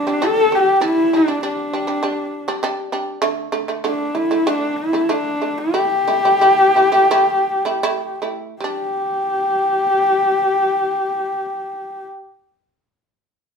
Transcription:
Already playing: D4
0.07 G3 D4
0.22 G3 D4 A4
0.52 G3 D4 G4
0.81 G3 D4 E4
1.13 G3 D4
1.28 G3 D4
1.43 G3 D4
1.73 G3 D4
1.87 G3 D4
2.03 G3 D4
2.48 G3 D4
2.63 G3 D4
2.92 G3 D4
3.22 D3 A3
3.52 D3 A3
3.68 D3 A3
3.84 D3 A3 D4
4.15 D3 A3 E4
4.31 D3 A3
4.47 D3 A3 D4
4.76 E4
4.93 D3 A3
5.09 D3 A3 D4
5.42 D3 A3
5.58 G4
5.74 A3 E4
6.08 A3 E4
6.25 A3 E4
6.41 A3 E4
6.76 A3 E4
6.92 A3 E4
7.11 A3 E4
7.65 A3 E4
7.83 A3 E4
8.22 A3 E4
8.61 G3 D4 G4

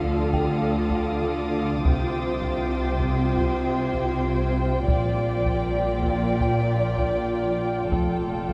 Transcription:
Already playing: D2 D3 F4 A4 F5 D6 D#6
0.33 G4 G5 A6, taiko
0.90 taiko
1.85 C2 C3 C5 G5, taiko
2.42 taiko
2.99 taiko
3.37 taiko
3.45 G#6
3.94 taiko
4.88 A#1 A#2 F4 D5, taiko
5.46 taiko
6.02 taiko
6.40 G5, taiko
6.97 taiko
7.91 F1 F2 A4, taiko
8.50 taiko

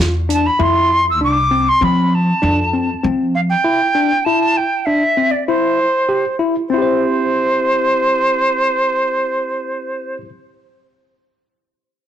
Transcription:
0.00 E2 F4, snare, closed hi-hat
0.29 D4 A5, closed hi-hat
0.46 B5
0.59 F2 E4 C6
1.10 E6
1.21 C2 D4 D6
1.51 C4
1.68 C6
1.81 F3 C4 B5
2.14 A5
2.42 F2 D4
2.73 C4
3.03 F3 C4
3.34 F5
3.49 G5
3.64 E4
3.95 D4
4.24 E4 A5
4.57 G5
4.85 D4 E5
5.17 C4
5.31 D5
5.47 E4 C5
6.09 G4
6.39 E4
6.68 C4 C5
6.74 E4 G4
6.82 C5

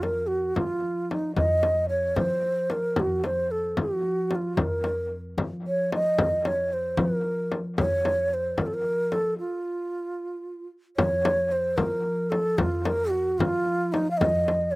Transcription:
Already playing: F2
0.03 A#4, frame drum
0.27 F#4
0.56 F3 F4, frame drum
1.11 D#4, frame drum
1.36 F2 D#5, frame drum
1.63 frame drum
1.89 C#5
2.16 F3 C5, frame drum
2.70 A#4, frame drum
2.96 F2 F#4, frame drum
3.24 C5, frame drum
3.51 A4
3.77 F3 F#4, frame drum
4.31 frame drum
4.35 F4
4.57 F2, frame drum
4.62 A#4
4.84 frame drum
5.37 F3, frame drum
5.67 C#5
5.92 D#5, frame drum
6.18 F2, frame drum
6.45 C#5, frame drum
6.73 C5
6.97 F3 A#4, frame drum
7.52 frame drum
7.78 F2 C#5, frame drum
8.05 frame drum
8.34 C5
8.58 F3 A#4, frame drum
8.67 A4
8.74 A#4
9.12 A4, frame drum
9.39 F4
10.97 F2 C#5, frame drum
11.25 frame drum
11.52 C5
11.77 F3 A#4, frame drum
12.30 A4, frame drum
12.58 F2 F4, frame drum
12.85 A#4, frame drum
13.10 F#4
13.38 F3 F4, frame drum
13.92 D#4, frame drum
14.11 F5
14.17 F2 D#5, frame drum
14.48 frame drum
14.71 C#5

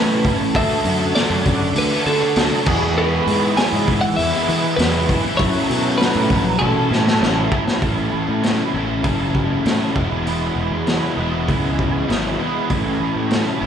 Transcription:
Already playing: A2 E3 A3 C#4 E4 A4 B4 E5 A5 C#6
0.24 E3 A3 C#4 E4, kick, open hi-hat
0.39 A3 C#4 E4, muted overdriven electric guitar stroke
0.53 D2 D3 A3 D4 F#4 A4 D5 E5 F#5 D6, kick, open hi-hat
0.84 F#2 D3 A3 D4 F#4, open hi-hat
1.00 A3 D4 F#4
1.15 D3 A3 D4 F#4 D5, snare, open hi-hat
1.30 F#2
1.45 F#2 D3 A3 D4 F#4, kick, open hi-hat
1.60 muted overdriven electric guitar stroke
1.75 D2 B4, open hi-hat
1.91 A3 D4 F#4
2.06 D3 A3 D4 F#4 A4, open hi-hat
2.20 A3 D4 F#4, muted overdriven electric guitar stroke
2.36 D2 D3 A3 D4, snare, open hi-hat
2.40 F#4
2.66 E2 E3 G#3 B3 E4 G#4 B4 E5 G#5 E6, kick, crash
2.81 B3 E4, muted overdriven electric guitar stroke
2.86 G#3
2.97 E3 G#3 B3 E4 B4
3.27 G#2 E3 G#3 B3, open hi-hat
3.31 E4
3.40 G#3 B3 E4
3.57 E3 G#3 B3 E4 G#5, snare, open hi-hat
3.73 G#2
3.88 G#2 E3 G#3 B3 E4, kick, open hi-hat
4.01 F#5, muted overdriven electric guitar stroke
4.16 E2 E5, open hi-hat
4.32 G#3 B3 E4
4.48 E3 G#3 B3 E4, open hi-hat
4.61 G#3 B3 E4, muted overdriven electric guitar stroke
4.76 E2 E3 G#3 B3 E4 B4, snare, open hi-hat
5.09 E3 G#3 B3 E4, kick, open hi-hat
5.22 E4, muted overdriven electric guitar stroke
5.26 G#3 B3
5.37 F#2 F#3 A3 C#4 E4 C#5 F#5 A5, kick, open hi-hat
5.42 F#4
5.70 B2 F#3 A3 C#4 F#4, open hi-hat
5.82 A3 C#4 F#4
5.98 F#3 A3 C#4 F#4 B4, snare, open hi-hat
6.16 A2
6.30 A#1 F#3 A3 C#4 F#4, kick, open hi-hat
6.45 muted overdriven electric guitar stroke
6.59 A1 A2 E3 A3 C#4 F#4 A4, high tom
6.63 E4
6.74 A3 C#4 E4
6.90 A2 E3 A3 C#4 E4, snare
7.05 A3 C#4 E4, muted overdriven electric guitar stroke, snare
7.21 A1 A2 E3 A3 C#4 E4, snare
7.52 E3 A3 C#4 E4, kick
7.65 C#4 E4, muted overdriven electric guitar stroke, snare
7.69 A3
7.81 A1 A2 E3 A3 C#4 E4, kick, open hi-hat
8.12 A1
8.28 A2
8.43 A2 E3 A3 C#4 E4, snare, open hi-hat
8.72 A1 A2 E3 A3 C#4 E4
9.02 F#1 A2 E3 A3 C#4 E4, kick, open hi-hat
9.35 kick
9.65 A2 E3 A3 C#4 E4, snare, open hi-hat
9.95 E1 E3 G#3 B3 E4, kick
10.26 E3 G#3 B3 E4, open hi-hat
10.56 E1
10.71 E2
10.86 E3 G#3 B3 E4, snare, open hi-hat
11.16 E1 E3 G#3 B3 E4
11.47 C#2 E3 G#3 B3 E4, kick, open hi-hat
11.79 kick
12.08 G#1 E3 G#3 B3 E4, snare, open hi-hat
12.39 E3 G#3 B3 E4
12.69 A1 A2 E3 A3 C#4 E4, kick, open hi-hat
13.00 A1
13.16 A2
13.30 A2 E3 A3 C#4 E4, snare, open hi-hat
13.61 A1 A2 E3 A3 C#4 E4

